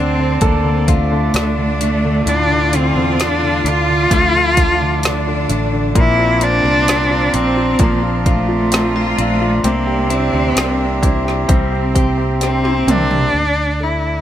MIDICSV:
0, 0, Header, 1, 8, 480
1, 0, Start_track
1, 0, Key_signature, -1, "minor"
1, 0, Tempo, 923077
1, 1177, Time_signature, 4, 2, 24, 8
1, 7389, End_track
2, 0, Start_track
2, 0, Title_t, "Accordion"
2, 0, Program_c, 0, 21
2, 0, Note_on_c, 0, 62, 68
2, 0, Note_on_c, 0, 74, 54
2, 0, Note_on_c, 0, 81, 56
2, 0, Note_on_c, 0, 86, 79
2, 3074, Note_off_c, 0, 81, 0
2, 3076, Note_off_c, 0, 86, 0
2, 3093, Note_on_c, 0, 84, 82
2, 3096, Note_on_c, 0, 82, 59
2, 4996, Note_off_c, 0, 62, 0
2, 4996, Note_off_c, 0, 74, 0
2, 5016, Note_on_c, 0, 67, 70
2, 5019, Note_on_c, 0, 76, 61
2, 6914, Note_off_c, 0, 84, 0
2, 6915, Note_off_c, 0, 82, 0
2, 6917, Note_off_c, 0, 67, 0
2, 6919, Note_off_c, 0, 76, 0
2, 7389, End_track
3, 0, Start_track
3, 0, Title_t, "Cello section"
3, 0, Program_c, 1, 48
3, 0, Note_on_c, 1, 60, 87
3, 675, Note_off_c, 1, 60, 0
3, 691, Note_on_c, 1, 62, 91
3, 1174, Note_off_c, 1, 62, 0
3, 1175, Note_on_c, 1, 65, 100
3, 2614, Note_on_c, 1, 62, 100
3, 2616, Note_off_c, 1, 65, 0
3, 3095, Note_off_c, 1, 62, 0
3, 3095, Note_on_c, 1, 60, 98
3, 4534, Note_on_c, 1, 65, 98
3, 4536, Note_off_c, 1, 60, 0
3, 5014, Note_on_c, 1, 62, 91
3, 5015, Note_off_c, 1, 65, 0
3, 5955, Note_off_c, 1, 62, 0
3, 5969, Note_on_c, 1, 60, 90
3, 6693, Note_off_c, 1, 60, 0
3, 7389, End_track
4, 0, Start_track
4, 0, Title_t, "Clean electric guitar"
4, 0, Program_c, 2, 27
4, 0, Note_on_c, 2, 50, 76
4, 0, Note_on_c, 2, 62, 54
4, 0, Note_on_c, 2, 69, 56
4, 362, Note_off_c, 2, 69, 0
4, 461, Note_on_c, 2, 65, 60
4, 700, Note_off_c, 2, 62, 0
4, 702, Note_on_c, 2, 62, 52
4, 939, Note_on_c, 2, 57, 55
4, 1177, Note_off_c, 2, 50, 0
4, 1184, Note_on_c, 2, 50, 75
4, 1417, Note_off_c, 2, 62, 0
4, 1419, Note_on_c, 2, 62, 52
4, 1655, Note_off_c, 2, 57, 0
4, 1662, Note_on_c, 2, 57, 61
4, 1900, Note_off_c, 2, 62, 0
4, 1902, Note_on_c, 2, 62, 59
4, 2142, Note_on_c, 2, 53, 72
4, 2375, Note_off_c, 2, 65, 0
4, 2381, Note_on_c, 2, 65, 61
4, 2620, Note_off_c, 2, 62, 0
4, 2622, Note_on_c, 2, 62, 55
4, 2849, Note_off_c, 2, 57, 0
4, 2856, Note_on_c, 2, 57, 53
4, 3096, Note_off_c, 2, 50, 0
4, 3098, Note_on_c, 2, 46, 84
4, 3144, Note_off_c, 2, 57, 0
4, 3335, Note_off_c, 2, 62, 0
4, 3337, Note_on_c, 2, 60, 51
4, 3461, Note_off_c, 2, 60, 0
4, 3461, Note_on_c, 2, 62, 45
4, 3581, Note_on_c, 2, 60, 66
4, 3816, Note_off_c, 2, 62, 0
4, 3822, Note_on_c, 2, 62, 60
4, 3962, Note_off_c, 2, 53, 0
4, 4061, Note_on_c, 2, 53, 76
4, 4201, Note_off_c, 2, 65, 0
4, 4298, Note_on_c, 2, 65, 59
4, 4536, Note_off_c, 2, 62, 0
4, 4538, Note_off_c, 2, 60, 0
4, 4538, Note_on_c, 2, 60, 54
4, 4657, Note_off_c, 2, 60, 0
4, 4657, Note_on_c, 2, 62, 49
4, 4774, Note_on_c, 2, 60, 63
4, 5011, Note_off_c, 2, 46, 0
4, 5013, Note_on_c, 2, 48, 86
4, 5065, Note_off_c, 2, 62, 0
4, 5066, Note_off_c, 2, 65, 0
4, 5067, Note_off_c, 2, 53, 0
4, 5251, Note_on_c, 2, 64, 52
4, 5493, Note_off_c, 2, 60, 0
4, 5495, Note_on_c, 2, 58, 61
4, 5727, Note_off_c, 2, 64, 0
4, 5733, Note_on_c, 2, 64, 54
4, 5972, Note_on_c, 2, 55, 70
4, 6215, Note_on_c, 2, 67, 53
4, 6453, Note_off_c, 2, 64, 0
4, 6455, Note_on_c, 2, 62, 50
4, 6578, Note_off_c, 2, 62, 0
4, 6578, Note_on_c, 2, 64, 45
4, 6691, Note_off_c, 2, 58, 0
4, 6697, Note_on_c, 2, 58, 52
4, 6935, Note_off_c, 2, 48, 0
4, 6983, Note_off_c, 2, 55, 0
4, 6984, Note_off_c, 2, 67, 0
4, 6985, Note_off_c, 2, 58, 0
4, 6985, Note_off_c, 2, 64, 0
4, 7389, End_track
5, 0, Start_track
5, 0, Title_t, "Cello"
5, 0, Program_c, 3, 42
5, 0, Note_on_c, 3, 60, 85
5, 220, Note_off_c, 3, 60, 0
5, 222, Note_on_c, 3, 58, 71
5, 464, Note_on_c, 3, 57, 88
5, 472, Note_off_c, 3, 58, 0
5, 940, Note_off_c, 3, 57, 0
5, 946, Note_on_c, 3, 57, 86
5, 1193, Note_on_c, 3, 62, 93
5, 1200, Note_off_c, 3, 57, 0
5, 1434, Note_on_c, 3, 60, 88
5, 1442, Note_off_c, 3, 62, 0
5, 1677, Note_on_c, 3, 62, 87
5, 1685, Note_off_c, 3, 60, 0
5, 1916, Note_on_c, 3, 65, 106
5, 1924, Note_off_c, 3, 62, 0
5, 2866, Note_off_c, 3, 65, 0
5, 3110, Note_on_c, 3, 64, 97
5, 3347, Note_on_c, 3, 62, 101
5, 3355, Note_off_c, 3, 64, 0
5, 3823, Note_on_c, 3, 60, 100
5, 3830, Note_off_c, 3, 62, 0
5, 4060, Note_off_c, 3, 60, 0
5, 4063, Note_on_c, 3, 58, 80
5, 4167, Note_off_c, 3, 58, 0
5, 4296, Note_on_c, 3, 57, 89
5, 4756, Note_off_c, 3, 57, 0
5, 4777, Note_on_c, 3, 57, 92
5, 5015, Note_on_c, 3, 58, 82
5, 5022, Note_off_c, 3, 57, 0
5, 5259, Note_on_c, 3, 60, 81
5, 5267, Note_off_c, 3, 58, 0
5, 5738, Note_off_c, 3, 60, 0
5, 6468, Note_on_c, 3, 60, 93
5, 6714, Note_on_c, 3, 62, 103
5, 6722, Note_off_c, 3, 60, 0
5, 7191, Note_on_c, 3, 64, 76
5, 7199, Note_off_c, 3, 62, 0
5, 7389, Note_off_c, 3, 64, 0
5, 7389, End_track
6, 0, Start_track
6, 0, Title_t, "Grand piano"
6, 0, Program_c, 4, 0
6, 0, Control_c, 4, 64, 127
6, 0, Note_on_c, 4, 50, 51
6, 93, Note_off_c, 4, 50, 0
6, 101, Note_on_c, 4, 50, 52
6, 218, Note_on_c, 4, 69, 69
6, 328, Note_off_c, 4, 50, 0
6, 336, Note_on_c, 4, 50, 50
6, 451, Note_off_c, 4, 50, 0
6, 459, Note_on_c, 4, 50, 45
6, 572, Note_off_c, 4, 50, 0
6, 580, Note_on_c, 4, 50, 56
6, 692, Note_off_c, 4, 50, 0
6, 699, Note_on_c, 4, 50, 55
6, 815, Note_off_c, 4, 50, 0
6, 823, Note_on_c, 4, 50, 48
6, 937, Note_off_c, 4, 50, 0
6, 945, Note_on_c, 4, 50, 46
6, 1058, Note_off_c, 4, 50, 0
6, 1066, Note_on_c, 4, 50, 50
6, 1183, Note_on_c, 4, 45, 65
6, 1298, Note_off_c, 4, 50, 0
6, 1306, Note_on_c, 4, 50, 55
6, 1417, Note_off_c, 4, 50, 0
6, 1424, Note_on_c, 4, 50, 55
6, 1535, Note_off_c, 4, 50, 0
6, 1543, Note_on_c, 4, 50, 54
6, 1654, Note_off_c, 4, 50, 0
6, 1662, Note_on_c, 4, 50, 53
6, 1777, Note_off_c, 4, 50, 0
6, 1785, Note_on_c, 4, 50, 55
6, 1899, Note_off_c, 4, 50, 0
6, 1907, Note_on_c, 4, 50, 50
6, 2016, Note_off_c, 4, 50, 0
6, 2024, Note_on_c, 4, 50, 53
6, 2117, Note_off_c, 4, 69, 0
6, 2143, Note_on_c, 4, 57, 72
6, 2257, Note_off_c, 4, 50, 0
6, 2265, Note_on_c, 4, 50, 54
6, 2377, Note_off_c, 4, 50, 0
6, 2385, Note_on_c, 4, 50, 45
6, 2499, Note_off_c, 4, 50, 0
6, 2507, Note_on_c, 4, 50, 54
6, 2619, Note_off_c, 4, 50, 0
6, 2626, Note_on_c, 4, 50, 59
6, 2736, Note_off_c, 4, 50, 0
6, 2743, Note_on_c, 4, 50, 54
6, 2854, Note_off_c, 4, 50, 0
6, 2862, Note_on_c, 4, 50, 51
6, 2974, Note_off_c, 4, 50, 0
6, 2982, Note_on_c, 4, 50, 51
6, 3079, Note_off_c, 4, 45, 0
6, 3079, Note_off_c, 4, 57, 0
6, 3096, Note_off_c, 4, 50, 0
6, 3099, Note_on_c, 4, 46, 76
6, 3104, Control_c, 4, 64, 0
6, 3207, Control_c, 4, 64, 127
6, 3220, Note_on_c, 4, 65, 52
6, 3334, Note_on_c, 4, 58, 54
6, 3449, Note_off_c, 4, 65, 0
6, 3457, Note_on_c, 4, 65, 50
6, 3578, Note_on_c, 4, 60, 53
6, 3688, Note_off_c, 4, 65, 0
6, 3695, Note_on_c, 4, 65, 56
6, 3815, Note_on_c, 4, 62, 54
6, 3930, Note_off_c, 4, 65, 0
6, 3938, Note_on_c, 4, 65, 51
6, 4055, Note_on_c, 4, 53, 72
6, 4167, Note_off_c, 4, 65, 0
6, 4175, Note_on_c, 4, 65, 52
6, 4274, Note_off_c, 4, 58, 0
6, 4405, Note_off_c, 4, 65, 0
6, 4413, Note_on_c, 4, 65, 53
6, 4517, Note_off_c, 4, 60, 0
6, 4535, Note_on_c, 4, 60, 59
6, 4648, Note_off_c, 4, 65, 0
6, 4655, Note_on_c, 4, 65, 52
6, 4755, Note_off_c, 4, 62, 0
6, 4774, Note_on_c, 4, 62, 55
6, 4887, Note_off_c, 4, 65, 0
6, 4895, Note_on_c, 4, 65, 53
6, 4995, Note_off_c, 4, 53, 0
6, 4997, Note_off_c, 4, 46, 0
6, 5002, Note_off_c, 4, 60, 0
6, 5008, Note_off_c, 4, 62, 0
6, 5012, Note_off_c, 4, 65, 0
6, 5017, Note_on_c, 4, 60, 74
6, 5024, Control_c, 4, 64, 0
6, 5100, Control_c, 4, 64, 127
6, 5132, Note_on_c, 4, 67, 56
6, 5245, Note_off_c, 4, 60, 0
6, 5252, Note_on_c, 4, 60, 51
6, 5365, Note_off_c, 4, 67, 0
6, 5373, Note_on_c, 4, 67, 46
6, 5486, Note_off_c, 4, 60, 0
6, 5494, Note_on_c, 4, 60, 55
6, 5604, Note_off_c, 4, 67, 0
6, 5612, Note_on_c, 4, 67, 49
6, 5722, Note_off_c, 4, 60, 0
6, 5730, Note_on_c, 4, 60, 47
6, 5842, Note_off_c, 4, 67, 0
6, 5850, Note_on_c, 4, 67, 47
6, 5965, Note_off_c, 4, 60, 0
6, 5972, Note_on_c, 4, 60, 70
6, 6087, Note_off_c, 4, 67, 0
6, 6095, Note_on_c, 4, 67, 51
6, 6204, Note_off_c, 4, 60, 0
6, 6212, Note_on_c, 4, 60, 51
6, 6325, Note_off_c, 4, 67, 0
6, 6333, Note_on_c, 4, 67, 52
6, 6446, Note_off_c, 4, 60, 0
6, 6454, Note_on_c, 4, 60, 56
6, 6565, Note_off_c, 4, 67, 0
6, 6573, Note_on_c, 4, 67, 52
6, 6688, Note_off_c, 4, 60, 0
6, 6695, Note_on_c, 4, 60, 53
6, 6807, Note_off_c, 4, 67, 0
6, 6815, Note_on_c, 4, 67, 49
6, 6929, Note_off_c, 4, 60, 0
6, 6932, Note_off_c, 4, 67, 0
6, 6934, Note_on_c, 4, 62, 55
6, 6943, Control_c, 4, 64, 0
6, 7041, Control_c, 4, 64, 127
6, 7177, Note_on_c, 4, 69, 38
6, 7389, Note_off_c, 4, 62, 0
6, 7389, Note_off_c, 4, 69, 0
6, 7389, End_track
7, 0, Start_track
7, 0, Title_t, "Fretless electric bass"
7, 0, Program_c, 5, 35
7, 0, Note_on_c, 5, 38, 87
7, 201, Note_off_c, 5, 38, 0
7, 216, Note_on_c, 5, 38, 84
7, 676, Note_off_c, 5, 38, 0
7, 698, Note_on_c, 5, 38, 94
7, 1157, Note_off_c, 5, 38, 0
7, 1174, Note_on_c, 5, 38, 99
7, 1515, Note_off_c, 5, 38, 0
7, 1531, Note_on_c, 5, 40, 77
7, 1873, Note_off_c, 5, 40, 0
7, 1894, Note_on_c, 5, 38, 97
7, 2118, Note_off_c, 5, 38, 0
7, 2136, Note_on_c, 5, 38, 88
7, 2836, Note_off_c, 5, 38, 0
7, 2855, Note_on_c, 5, 33, 82
7, 3079, Note_off_c, 5, 33, 0
7, 3094, Note_on_c, 5, 34, 100
7, 3435, Note_off_c, 5, 34, 0
7, 3452, Note_on_c, 5, 36, 75
7, 3794, Note_off_c, 5, 36, 0
7, 3816, Note_on_c, 5, 34, 100
7, 4040, Note_off_c, 5, 34, 0
7, 4054, Note_on_c, 5, 34, 92
7, 4754, Note_off_c, 5, 34, 0
7, 4776, Note_on_c, 5, 34, 87
7, 4999, Note_off_c, 5, 34, 0
7, 5012, Note_on_c, 5, 36, 100
7, 5353, Note_off_c, 5, 36, 0
7, 5373, Note_on_c, 5, 38, 77
7, 5486, Note_off_c, 5, 38, 0
7, 5494, Note_on_c, 5, 36, 90
7, 5954, Note_off_c, 5, 36, 0
7, 5976, Note_on_c, 5, 36, 87
7, 6675, Note_off_c, 5, 36, 0
7, 6694, Note_on_c, 5, 36, 82
7, 6918, Note_off_c, 5, 36, 0
7, 6934, Note_on_c, 5, 38, 68
7, 7389, Note_off_c, 5, 38, 0
7, 7389, End_track
8, 0, Start_track
8, 0, Title_t, "Drums"
8, 213, Note_on_c, 9, 42, 74
8, 217, Note_on_c, 9, 36, 96
8, 265, Note_off_c, 9, 42, 0
8, 269, Note_off_c, 9, 36, 0
8, 458, Note_on_c, 9, 36, 68
8, 458, Note_on_c, 9, 42, 62
8, 510, Note_off_c, 9, 36, 0
8, 510, Note_off_c, 9, 42, 0
8, 697, Note_on_c, 9, 42, 67
8, 708, Note_on_c, 9, 38, 92
8, 749, Note_off_c, 9, 42, 0
8, 760, Note_off_c, 9, 38, 0
8, 940, Note_on_c, 9, 42, 70
8, 992, Note_off_c, 9, 42, 0
8, 1180, Note_on_c, 9, 42, 81
8, 1232, Note_off_c, 9, 42, 0
8, 1420, Note_on_c, 9, 42, 67
8, 1472, Note_off_c, 9, 42, 0
8, 1662, Note_on_c, 9, 42, 82
8, 1667, Note_on_c, 9, 38, 101
8, 1714, Note_off_c, 9, 42, 0
8, 1719, Note_off_c, 9, 38, 0
8, 1903, Note_on_c, 9, 42, 65
8, 1955, Note_off_c, 9, 42, 0
8, 2137, Note_on_c, 9, 36, 95
8, 2138, Note_on_c, 9, 42, 82
8, 2189, Note_off_c, 9, 36, 0
8, 2190, Note_off_c, 9, 42, 0
8, 2377, Note_on_c, 9, 42, 66
8, 2378, Note_on_c, 9, 36, 75
8, 2429, Note_off_c, 9, 42, 0
8, 2430, Note_off_c, 9, 36, 0
8, 2617, Note_on_c, 9, 42, 74
8, 2628, Note_on_c, 9, 38, 97
8, 2669, Note_off_c, 9, 42, 0
8, 2680, Note_off_c, 9, 38, 0
8, 2858, Note_on_c, 9, 42, 68
8, 2910, Note_off_c, 9, 42, 0
8, 3096, Note_on_c, 9, 36, 106
8, 3097, Note_on_c, 9, 42, 81
8, 3148, Note_off_c, 9, 36, 0
8, 3149, Note_off_c, 9, 42, 0
8, 3334, Note_on_c, 9, 42, 68
8, 3386, Note_off_c, 9, 42, 0
8, 3578, Note_on_c, 9, 42, 87
8, 3583, Note_on_c, 9, 38, 113
8, 3630, Note_off_c, 9, 42, 0
8, 3635, Note_off_c, 9, 38, 0
8, 3815, Note_on_c, 9, 42, 66
8, 3867, Note_off_c, 9, 42, 0
8, 4050, Note_on_c, 9, 42, 79
8, 4054, Note_on_c, 9, 36, 106
8, 4102, Note_off_c, 9, 42, 0
8, 4106, Note_off_c, 9, 36, 0
8, 4295, Note_on_c, 9, 42, 58
8, 4296, Note_on_c, 9, 36, 81
8, 4347, Note_off_c, 9, 42, 0
8, 4348, Note_off_c, 9, 36, 0
8, 4533, Note_on_c, 9, 42, 80
8, 4544, Note_on_c, 9, 38, 88
8, 4585, Note_off_c, 9, 42, 0
8, 4596, Note_off_c, 9, 38, 0
8, 4776, Note_on_c, 9, 42, 72
8, 4828, Note_off_c, 9, 42, 0
8, 5014, Note_on_c, 9, 42, 79
8, 5066, Note_off_c, 9, 42, 0
8, 5254, Note_on_c, 9, 42, 60
8, 5306, Note_off_c, 9, 42, 0
8, 5495, Note_on_c, 9, 42, 88
8, 5501, Note_on_c, 9, 38, 114
8, 5547, Note_off_c, 9, 42, 0
8, 5553, Note_off_c, 9, 38, 0
8, 5734, Note_on_c, 9, 36, 89
8, 5737, Note_on_c, 9, 42, 59
8, 5786, Note_off_c, 9, 36, 0
8, 5789, Note_off_c, 9, 42, 0
8, 5866, Note_on_c, 9, 38, 33
8, 5918, Note_off_c, 9, 38, 0
8, 5974, Note_on_c, 9, 42, 76
8, 5975, Note_on_c, 9, 36, 94
8, 6026, Note_off_c, 9, 42, 0
8, 6027, Note_off_c, 9, 36, 0
8, 6217, Note_on_c, 9, 36, 69
8, 6217, Note_on_c, 9, 42, 62
8, 6269, Note_off_c, 9, 36, 0
8, 6269, Note_off_c, 9, 42, 0
8, 6454, Note_on_c, 9, 42, 74
8, 6464, Note_on_c, 9, 38, 49
8, 6506, Note_off_c, 9, 42, 0
8, 6516, Note_off_c, 9, 38, 0
8, 6576, Note_on_c, 9, 48, 56
8, 6628, Note_off_c, 9, 48, 0
8, 6698, Note_on_c, 9, 45, 96
8, 6699, Note_on_c, 9, 42, 66
8, 6750, Note_off_c, 9, 45, 0
8, 6751, Note_off_c, 9, 42, 0
8, 6817, Note_on_c, 9, 43, 90
8, 6869, Note_off_c, 9, 43, 0
8, 7389, End_track
0, 0, End_of_file